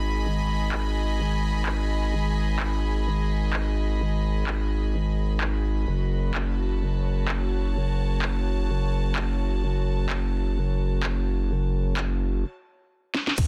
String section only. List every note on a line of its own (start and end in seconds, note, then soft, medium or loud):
0.00 5.88 G#4 medium
0.00 7.26 D#5 medium
0.00 5.88 G#5 medium
0.00 7.58 B5 medium
5.88 12.44 F#4 medium
6.15 12.44 C#5 medium
6.35 12.44 A5 medium
13.38 13.47 G#4 medium